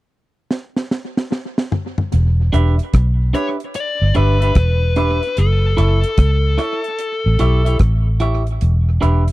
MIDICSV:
0, 0, Header, 1, 6, 480
1, 0, Start_track
1, 0, Tempo, 811249
1, 1256, Time_signature, 4, 2, 24, 8
1, 5516, End_track
2, 0, Start_track
2, 0, Title_t, "Lead electric guitar"
2, 0, Program_c, 0, 29
2, 1980, Note_on_c, 0, 73, 91
2, 2044, Note_off_c, 0, 73, 0
2, 2224, Note_on_c, 0, 74, 96
2, 2463, Note_off_c, 0, 74, 0
2, 2465, Note_on_c, 0, 71, 104
2, 3184, Note_on_c, 0, 69, 78
2, 3202, Note_off_c, 0, 71, 0
2, 4596, Note_off_c, 0, 69, 0
2, 5516, End_track
3, 0, Start_track
3, 0, Title_t, "Clean electric guitar"
3, 0, Program_c, 1, 27
3, 1494, Note_on_c, 1, 62, 82
3, 1498, Note_on_c, 1, 67, 78
3, 1501, Note_on_c, 1, 71, 81
3, 1504, Note_on_c, 1, 76, 96
3, 1621, Note_off_c, 1, 62, 0
3, 1623, Note_off_c, 1, 67, 0
3, 1625, Note_off_c, 1, 71, 0
3, 1626, Note_off_c, 1, 76, 0
3, 1973, Note_on_c, 1, 62, 71
3, 1978, Note_on_c, 1, 67, 79
3, 1979, Note_on_c, 1, 71, 88
3, 1982, Note_on_c, 1, 76, 78
3, 2101, Note_off_c, 1, 62, 0
3, 2103, Note_off_c, 1, 67, 0
3, 2104, Note_off_c, 1, 71, 0
3, 2105, Note_off_c, 1, 76, 0
3, 2454, Note_on_c, 1, 62, 72
3, 2457, Note_on_c, 1, 67, 77
3, 2460, Note_on_c, 1, 71, 84
3, 2462, Note_on_c, 1, 76, 86
3, 2581, Note_off_c, 1, 62, 0
3, 2583, Note_off_c, 1, 67, 0
3, 2584, Note_off_c, 1, 71, 0
3, 2585, Note_off_c, 1, 76, 0
3, 2606, Note_on_c, 1, 76, 63
3, 2611, Note_on_c, 1, 71, 64
3, 2614, Note_on_c, 1, 67, 58
3, 2616, Note_on_c, 1, 62, 55
3, 2664, Note_off_c, 1, 76, 0
3, 2667, Note_off_c, 1, 71, 0
3, 2668, Note_off_c, 1, 67, 0
3, 2669, Note_off_c, 1, 62, 0
3, 2937, Note_on_c, 1, 62, 83
3, 2939, Note_on_c, 1, 67, 81
3, 2941, Note_on_c, 1, 71, 94
3, 2945, Note_on_c, 1, 76, 91
3, 3062, Note_off_c, 1, 62, 0
3, 3064, Note_off_c, 1, 67, 0
3, 3065, Note_off_c, 1, 71, 0
3, 3067, Note_off_c, 1, 76, 0
3, 3413, Note_on_c, 1, 64, 83
3, 3416, Note_on_c, 1, 69, 82
3, 3421, Note_on_c, 1, 73, 87
3, 3423, Note_on_c, 1, 76, 80
3, 3541, Note_off_c, 1, 64, 0
3, 3542, Note_off_c, 1, 69, 0
3, 3545, Note_off_c, 1, 73, 0
3, 3545, Note_off_c, 1, 76, 0
3, 3891, Note_on_c, 1, 64, 71
3, 3894, Note_on_c, 1, 69, 75
3, 3898, Note_on_c, 1, 73, 80
3, 3899, Note_on_c, 1, 76, 83
3, 4020, Note_off_c, 1, 64, 0
3, 4021, Note_off_c, 1, 69, 0
3, 4023, Note_off_c, 1, 73, 0
3, 4024, Note_off_c, 1, 76, 0
3, 4374, Note_on_c, 1, 64, 74
3, 4376, Note_on_c, 1, 67, 81
3, 4379, Note_on_c, 1, 73, 77
3, 4383, Note_on_c, 1, 76, 77
3, 4501, Note_off_c, 1, 64, 0
3, 4502, Note_off_c, 1, 67, 0
3, 4504, Note_off_c, 1, 73, 0
3, 4506, Note_off_c, 1, 76, 0
3, 4528, Note_on_c, 1, 76, 61
3, 4531, Note_on_c, 1, 73, 53
3, 4535, Note_on_c, 1, 67, 50
3, 4536, Note_on_c, 1, 64, 48
3, 4584, Note_off_c, 1, 76, 0
3, 4586, Note_off_c, 1, 73, 0
3, 4588, Note_off_c, 1, 67, 0
3, 4589, Note_off_c, 1, 64, 0
3, 4852, Note_on_c, 1, 64, 87
3, 4856, Note_on_c, 1, 67, 86
3, 4860, Note_on_c, 1, 73, 91
3, 4861, Note_on_c, 1, 76, 96
3, 4980, Note_off_c, 1, 64, 0
3, 4982, Note_off_c, 1, 67, 0
3, 4984, Note_off_c, 1, 73, 0
3, 4985, Note_off_c, 1, 76, 0
3, 5330, Note_on_c, 1, 62, 81
3, 5333, Note_on_c, 1, 67, 88
3, 5335, Note_on_c, 1, 71, 83
3, 5337, Note_on_c, 1, 76, 96
3, 5459, Note_off_c, 1, 62, 0
3, 5460, Note_off_c, 1, 67, 0
3, 5461, Note_off_c, 1, 71, 0
3, 5463, Note_off_c, 1, 76, 0
3, 5516, End_track
4, 0, Start_track
4, 0, Title_t, "Fingered electric bass"
4, 0, Program_c, 2, 33
4, 1263, Note_on_c, 2, 28, 100
4, 1489, Note_off_c, 2, 28, 0
4, 1503, Note_on_c, 2, 28, 95
4, 1645, Note_off_c, 2, 28, 0
4, 1742, Note_on_c, 2, 35, 101
4, 1968, Note_off_c, 2, 35, 0
4, 2376, Note_on_c, 2, 31, 70
4, 2456, Note_off_c, 2, 31, 0
4, 2465, Note_on_c, 2, 31, 86
4, 2690, Note_off_c, 2, 31, 0
4, 2698, Note_on_c, 2, 28, 100
4, 3072, Note_off_c, 2, 28, 0
4, 3184, Note_on_c, 2, 30, 96
4, 3409, Note_off_c, 2, 30, 0
4, 3422, Note_on_c, 2, 30, 111
4, 3565, Note_off_c, 2, 30, 0
4, 3659, Note_on_c, 2, 37, 90
4, 3887, Note_off_c, 2, 37, 0
4, 4296, Note_on_c, 2, 33, 82
4, 4376, Note_off_c, 2, 33, 0
4, 4381, Note_on_c, 2, 35, 83
4, 4608, Note_off_c, 2, 35, 0
4, 4616, Note_on_c, 2, 33, 95
4, 5074, Note_off_c, 2, 33, 0
4, 5102, Note_on_c, 2, 28, 99
4, 5328, Note_off_c, 2, 28, 0
4, 5343, Note_on_c, 2, 28, 91
4, 5485, Note_off_c, 2, 28, 0
4, 5516, End_track
5, 0, Start_track
5, 0, Title_t, "Muted clean electric guitar strokes"
5, 3087, Note_on_c, 9, 29, 43
5, 3146, Note_off_c, 9, 29, 0
5, 5516, End_track
6, 0, Start_track
6, 0, Title_t, "Drums"
6, 299, Note_on_c, 9, 38, 68
6, 358, Note_off_c, 9, 38, 0
6, 452, Note_on_c, 9, 38, 65
6, 512, Note_off_c, 9, 38, 0
6, 540, Note_on_c, 9, 38, 80
6, 599, Note_off_c, 9, 38, 0
6, 694, Note_on_c, 9, 38, 79
6, 754, Note_off_c, 9, 38, 0
6, 781, Note_on_c, 9, 38, 77
6, 841, Note_off_c, 9, 38, 0
6, 934, Note_on_c, 9, 38, 86
6, 993, Note_off_c, 9, 38, 0
6, 1018, Note_on_c, 9, 45, 104
6, 1077, Note_off_c, 9, 45, 0
6, 1171, Note_on_c, 9, 45, 94
6, 1230, Note_off_c, 9, 45, 0
6, 1257, Note_on_c, 9, 42, 82
6, 1316, Note_off_c, 9, 42, 0
6, 1501, Note_on_c, 9, 42, 67
6, 1560, Note_off_c, 9, 42, 0
6, 1651, Note_on_c, 9, 42, 47
6, 1710, Note_off_c, 9, 42, 0
6, 1737, Note_on_c, 9, 42, 90
6, 1738, Note_on_c, 9, 36, 105
6, 1743, Note_on_c, 9, 37, 118
6, 1796, Note_off_c, 9, 42, 0
6, 1797, Note_off_c, 9, 36, 0
6, 1802, Note_off_c, 9, 37, 0
6, 1979, Note_on_c, 9, 42, 67
6, 2039, Note_off_c, 9, 42, 0
6, 2131, Note_on_c, 9, 42, 45
6, 2190, Note_off_c, 9, 42, 0
6, 2215, Note_on_c, 9, 42, 88
6, 2274, Note_off_c, 9, 42, 0
6, 2454, Note_on_c, 9, 42, 70
6, 2513, Note_off_c, 9, 42, 0
6, 2614, Note_on_c, 9, 42, 55
6, 2673, Note_off_c, 9, 42, 0
6, 2693, Note_on_c, 9, 42, 77
6, 2696, Note_on_c, 9, 36, 101
6, 2700, Note_on_c, 9, 37, 114
6, 2752, Note_off_c, 9, 42, 0
6, 2755, Note_off_c, 9, 36, 0
6, 2759, Note_off_c, 9, 37, 0
6, 2935, Note_on_c, 9, 42, 76
6, 2994, Note_off_c, 9, 42, 0
6, 3093, Note_on_c, 9, 42, 47
6, 3152, Note_off_c, 9, 42, 0
6, 3176, Note_on_c, 9, 42, 82
6, 3236, Note_off_c, 9, 42, 0
6, 3421, Note_on_c, 9, 42, 73
6, 3480, Note_off_c, 9, 42, 0
6, 3570, Note_on_c, 9, 42, 51
6, 3630, Note_off_c, 9, 42, 0
6, 3654, Note_on_c, 9, 42, 100
6, 3656, Note_on_c, 9, 36, 105
6, 3660, Note_on_c, 9, 37, 110
6, 3713, Note_off_c, 9, 42, 0
6, 3716, Note_off_c, 9, 36, 0
6, 3719, Note_off_c, 9, 37, 0
6, 3894, Note_on_c, 9, 37, 58
6, 3896, Note_on_c, 9, 42, 70
6, 3953, Note_off_c, 9, 37, 0
6, 3956, Note_off_c, 9, 42, 0
6, 4048, Note_on_c, 9, 42, 47
6, 4107, Note_off_c, 9, 42, 0
6, 4133, Note_on_c, 9, 42, 89
6, 4193, Note_off_c, 9, 42, 0
6, 4372, Note_on_c, 9, 42, 76
6, 4432, Note_off_c, 9, 42, 0
6, 4533, Note_on_c, 9, 42, 59
6, 4592, Note_off_c, 9, 42, 0
6, 4611, Note_on_c, 9, 42, 75
6, 4614, Note_on_c, 9, 36, 98
6, 4618, Note_on_c, 9, 37, 104
6, 4670, Note_off_c, 9, 42, 0
6, 4673, Note_off_c, 9, 36, 0
6, 4677, Note_off_c, 9, 37, 0
6, 4852, Note_on_c, 9, 42, 81
6, 4911, Note_off_c, 9, 42, 0
6, 5010, Note_on_c, 9, 42, 45
6, 5069, Note_off_c, 9, 42, 0
6, 5094, Note_on_c, 9, 42, 80
6, 5154, Note_off_c, 9, 42, 0
6, 5340, Note_on_c, 9, 42, 72
6, 5399, Note_off_c, 9, 42, 0
6, 5489, Note_on_c, 9, 42, 54
6, 5516, Note_off_c, 9, 42, 0
6, 5516, End_track
0, 0, End_of_file